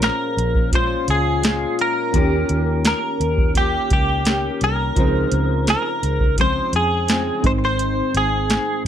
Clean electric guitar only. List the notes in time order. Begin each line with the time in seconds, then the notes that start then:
0.04 A#4
0.75 C5
1.10 G#4
1.81 A#4
2.87 A#4
3.57 G4
3.93 G4
4.64 A#4
5.70 A#4
6.41 C5
6.76 G#4
7.47 C5
7.65 C5
8.17 G#4